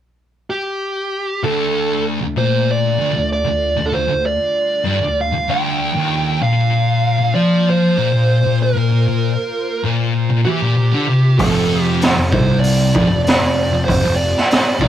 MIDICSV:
0, 0, Header, 1, 6, 480
1, 0, Start_track
1, 0, Key_signature, -1, "minor"
1, 0, Tempo, 621762
1, 1107, Time_signature, 4, 2, 24, 8
1, 11487, End_track
2, 0, Start_track
2, 0, Title_t, "Lead electric guitar"
2, 0, Program_c, 0, 29
2, 387, Note_on_c, 0, 67, 86
2, 1111, Note_off_c, 0, 67, 0
2, 1114, Note_on_c, 0, 69, 113
2, 1560, Note_off_c, 0, 69, 0
2, 1837, Note_on_c, 0, 72, 80
2, 2079, Note_off_c, 0, 72, 0
2, 2094, Note_on_c, 0, 74, 88
2, 2530, Note_off_c, 0, 74, 0
2, 2570, Note_on_c, 0, 74, 84
2, 2978, Note_on_c, 0, 69, 69
2, 2997, Note_off_c, 0, 74, 0
2, 3030, Note_off_c, 0, 69, 0
2, 3043, Note_on_c, 0, 72, 99
2, 3282, Note_off_c, 0, 72, 0
2, 3288, Note_on_c, 0, 74, 93
2, 4020, Note_off_c, 0, 74, 0
2, 4023, Note_on_c, 0, 77, 102
2, 4248, Note_off_c, 0, 77, 0
2, 4251, Note_on_c, 0, 79, 108
2, 4958, Note_off_c, 0, 79, 0
2, 4961, Note_on_c, 0, 77, 109
2, 5645, Note_off_c, 0, 77, 0
2, 5672, Note_on_c, 0, 74, 87
2, 5919, Note_off_c, 0, 74, 0
2, 5941, Note_on_c, 0, 72, 88
2, 6616, Note_off_c, 0, 72, 0
2, 6659, Note_on_c, 0, 70, 78
2, 7575, Note_off_c, 0, 70, 0
2, 8067, Note_on_c, 0, 67, 85
2, 8787, Note_off_c, 0, 67, 0
2, 8790, Note_on_c, 0, 69, 115
2, 9138, Note_off_c, 0, 69, 0
2, 9138, Note_on_c, 0, 67, 115
2, 9241, Note_off_c, 0, 67, 0
2, 9508, Note_on_c, 0, 72, 85
2, 9723, Note_off_c, 0, 72, 0
2, 9726, Note_on_c, 0, 74, 97
2, 10188, Note_off_c, 0, 74, 0
2, 10225, Note_on_c, 0, 74, 93
2, 10688, Note_off_c, 0, 74, 0
2, 10691, Note_on_c, 0, 72, 106
2, 10924, Note_off_c, 0, 72, 0
2, 10928, Note_on_c, 0, 74, 100
2, 11487, Note_off_c, 0, 74, 0
2, 11487, End_track
3, 0, Start_track
3, 0, Title_t, "Synth drone"
3, 0, Program_c, 1, 95
3, 1092, Note_on_c, 1, 50, 78
3, 1098, Note_on_c, 1, 57, 73
3, 1102, Note_on_c, 1, 65, 93
3, 3004, Note_off_c, 1, 57, 0
3, 3040, Note_on_c, 1, 55, 75
3, 4911, Note_off_c, 1, 50, 0
3, 4916, Note_off_c, 1, 65, 0
3, 4936, Note_off_c, 1, 55, 0
3, 4937, Note_on_c, 1, 72, 94
3, 4942, Note_on_c, 1, 65, 75
3, 4951, Note_on_c, 1, 58, 85
3, 8756, Note_off_c, 1, 72, 0
3, 8758, Note_off_c, 1, 65, 0
3, 8763, Note_off_c, 1, 58, 0
3, 8794, Note_on_c, 1, 60, 76
3, 8799, Note_on_c, 1, 67, 90
3, 8801, Note_on_c, 1, 53, 86
3, 11487, Note_off_c, 1, 53, 0
3, 11487, Note_off_c, 1, 60, 0
3, 11487, Note_off_c, 1, 67, 0
3, 11487, End_track
4, 0, Start_track
4, 0, Title_t, "Distorted electric guitar"
4, 0, Program_c, 2, 30
4, 1107, Note_on_c, 2, 38, 108
4, 1696, Note_off_c, 2, 38, 0
4, 1705, Note_on_c, 2, 38, 70
4, 1823, Note_off_c, 2, 38, 0
4, 1826, Note_on_c, 2, 46, 102
4, 2300, Note_off_c, 2, 46, 0
4, 2304, Note_on_c, 2, 38, 97
4, 2408, Note_off_c, 2, 38, 0
4, 2417, Note_on_c, 2, 38, 68
4, 2614, Note_off_c, 2, 38, 0
4, 2659, Note_on_c, 2, 38, 72
4, 2855, Note_off_c, 2, 38, 0
4, 2903, Note_on_c, 2, 38, 73
4, 3017, Note_off_c, 2, 38, 0
4, 3026, Note_on_c, 2, 38, 72
4, 3135, Note_off_c, 2, 38, 0
4, 3144, Note_on_c, 2, 38, 69
4, 3338, Note_off_c, 2, 38, 0
4, 3738, Note_on_c, 2, 43, 101
4, 3856, Note_off_c, 2, 43, 0
4, 3868, Note_on_c, 2, 38, 69
4, 4060, Note_off_c, 2, 38, 0
4, 4116, Note_on_c, 2, 38, 72
4, 4229, Note_off_c, 2, 38, 0
4, 4239, Note_on_c, 2, 38, 103
4, 4587, Note_off_c, 2, 38, 0
4, 4599, Note_on_c, 2, 39, 102
4, 4947, Note_off_c, 2, 39, 0
4, 4952, Note_on_c, 2, 46, 107
4, 5541, Note_off_c, 2, 46, 0
4, 5550, Note_on_c, 2, 46, 76
4, 5670, Note_off_c, 2, 46, 0
4, 5670, Note_on_c, 2, 53, 98
4, 6143, Note_off_c, 2, 53, 0
4, 6160, Note_on_c, 2, 46, 104
4, 6268, Note_off_c, 2, 46, 0
4, 6278, Note_on_c, 2, 46, 73
4, 6467, Note_off_c, 2, 46, 0
4, 6526, Note_on_c, 2, 46, 75
4, 6711, Note_off_c, 2, 46, 0
4, 6762, Note_on_c, 2, 46, 71
4, 6873, Note_off_c, 2, 46, 0
4, 6882, Note_on_c, 2, 46, 76
4, 6995, Note_off_c, 2, 46, 0
4, 7004, Note_on_c, 2, 46, 71
4, 7190, Note_off_c, 2, 46, 0
4, 7600, Note_on_c, 2, 46, 97
4, 7940, Note_off_c, 2, 46, 0
4, 7949, Note_on_c, 2, 46, 99
4, 8064, Note_off_c, 2, 46, 0
4, 8072, Note_on_c, 2, 52, 98
4, 8185, Note_off_c, 2, 52, 0
4, 8196, Note_on_c, 2, 46, 92
4, 8305, Note_off_c, 2, 46, 0
4, 8314, Note_on_c, 2, 46, 99
4, 8426, Note_off_c, 2, 46, 0
4, 8442, Note_on_c, 2, 50, 95
4, 8550, Note_off_c, 2, 50, 0
4, 8557, Note_on_c, 2, 48, 94
4, 8788, Note_off_c, 2, 48, 0
4, 8791, Note_on_c, 2, 41, 105
4, 9385, Note_off_c, 2, 41, 0
4, 9394, Note_on_c, 2, 41, 72
4, 9514, Note_off_c, 2, 41, 0
4, 9518, Note_on_c, 2, 48, 104
4, 9988, Note_off_c, 2, 48, 0
4, 9996, Note_on_c, 2, 41, 96
4, 10107, Note_off_c, 2, 41, 0
4, 10119, Note_on_c, 2, 41, 73
4, 10307, Note_off_c, 2, 41, 0
4, 10356, Note_on_c, 2, 41, 74
4, 10546, Note_off_c, 2, 41, 0
4, 10595, Note_on_c, 2, 41, 76
4, 10703, Note_off_c, 2, 41, 0
4, 10712, Note_on_c, 2, 41, 76
4, 10824, Note_off_c, 2, 41, 0
4, 10834, Note_on_c, 2, 41, 75
4, 11024, Note_off_c, 2, 41, 0
4, 11418, Note_on_c, 2, 46, 97
4, 11487, Note_off_c, 2, 46, 0
4, 11487, End_track
5, 0, Start_track
5, 0, Title_t, "Picked electric bass"
5, 0, Program_c, 3, 34
5, 8796, Note_on_c, 3, 29, 92
5, 9364, Note_off_c, 3, 29, 0
5, 9397, Note_on_c, 3, 29, 80
5, 9507, Note_off_c, 3, 29, 0
5, 9514, Note_on_c, 3, 36, 96
5, 9962, Note_off_c, 3, 36, 0
5, 9998, Note_on_c, 3, 29, 88
5, 10107, Note_off_c, 3, 29, 0
5, 10114, Note_on_c, 3, 29, 80
5, 10336, Note_off_c, 3, 29, 0
5, 10353, Note_on_c, 3, 29, 78
5, 10575, Note_off_c, 3, 29, 0
5, 10589, Note_on_c, 3, 29, 73
5, 10702, Note_off_c, 3, 29, 0
5, 10719, Note_on_c, 3, 29, 76
5, 10827, Note_off_c, 3, 29, 0
5, 10841, Note_on_c, 3, 29, 86
5, 11060, Note_off_c, 3, 29, 0
5, 11433, Note_on_c, 3, 34, 95
5, 11487, Note_off_c, 3, 34, 0
5, 11487, End_track
6, 0, Start_track
6, 0, Title_t, "Drums"
6, 8796, Note_on_c, 9, 36, 105
6, 8796, Note_on_c, 9, 46, 57
6, 8873, Note_off_c, 9, 36, 0
6, 8873, Note_off_c, 9, 46, 0
6, 9275, Note_on_c, 9, 46, 52
6, 9288, Note_on_c, 9, 38, 109
6, 9353, Note_off_c, 9, 46, 0
6, 9365, Note_off_c, 9, 38, 0
6, 9515, Note_on_c, 9, 36, 103
6, 9592, Note_off_c, 9, 36, 0
6, 9756, Note_on_c, 9, 46, 56
6, 9833, Note_off_c, 9, 46, 0
6, 9997, Note_on_c, 9, 36, 101
6, 10074, Note_off_c, 9, 36, 0
6, 10242, Note_on_c, 9, 46, 60
6, 10254, Note_on_c, 9, 38, 114
6, 10319, Note_off_c, 9, 46, 0
6, 10331, Note_off_c, 9, 38, 0
6, 10718, Note_on_c, 9, 36, 91
6, 10727, Note_on_c, 9, 46, 64
6, 10795, Note_off_c, 9, 36, 0
6, 10804, Note_off_c, 9, 46, 0
6, 11093, Note_on_c, 9, 38, 35
6, 11170, Note_off_c, 9, 38, 0
6, 11200, Note_on_c, 9, 46, 59
6, 11212, Note_on_c, 9, 38, 107
6, 11277, Note_off_c, 9, 46, 0
6, 11289, Note_off_c, 9, 38, 0
6, 11433, Note_on_c, 9, 36, 100
6, 11487, Note_off_c, 9, 36, 0
6, 11487, End_track
0, 0, End_of_file